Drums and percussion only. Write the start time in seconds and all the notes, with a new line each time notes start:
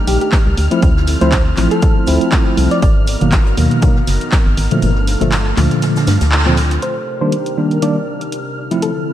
0.07 snare, open hi-hat, shaker
0.21 closed hi-hat
0.32 kick, snare, clap, shaker
0.57 open hi-hat, shaker
0.71 closed hi-hat
0.82 kick, closed hi-hat, shaker
0.97 snare
1.06 snare, open hi-hat, shaker
1.21 snare, closed hi-hat
1.32 kick, snare, clap, closed hi-hat, shaker
1.57 clap, open hi-hat, shaker
1.71 closed hi-hat
1.82 kick, closed hi-hat, shaker
2.07 open hi-hat, shaker
2.21 closed hi-hat
2.32 kick, snare, clap, shaker
2.57 open hi-hat, shaker
2.71 snare, closed hi-hat
2.82 kick, closed hi-hat, shaker
3.07 open hi-hat, shaker
3.21 closed hi-hat
3.32 kick, snare, clap, closed hi-hat, shaker
3.46 closed hi-hat
3.57 open hi-hat, shaker
3.71 closed hi-hat
3.82 kick, closed hi-hat, shaker
3.96 snare
4.07 snare, open hi-hat, shaker
4.21 closed hi-hat
4.32 kick, snare, clap, shaker
4.57 open hi-hat, shaker
4.71 closed hi-hat
4.82 closed hi-hat, shaker
4.96 snare
5.07 snare, open hi-hat, shaker
5.21 snare, closed hi-hat
5.32 snare, clap, closed hi-hat, shaker
5.57 clap, open hi-hat, shaker
5.71 snare, closed hi-hat
5.82 snare, closed hi-hat, shaker
5.96 snare, shaker
6.07 snare, open hi-hat, shaker
6.21 snare, closed hi-hat, shaker
6.32 clap
6.57 open hi-hat, shaker
6.71 snare, closed hi-hat
6.82 closed hi-hat
7.32 closed hi-hat
7.46 closed hi-hat
7.71 closed hi-hat
7.82 closed hi-hat
8.21 closed hi-hat
8.32 closed hi-hat
8.71 closed hi-hat
8.82 closed hi-hat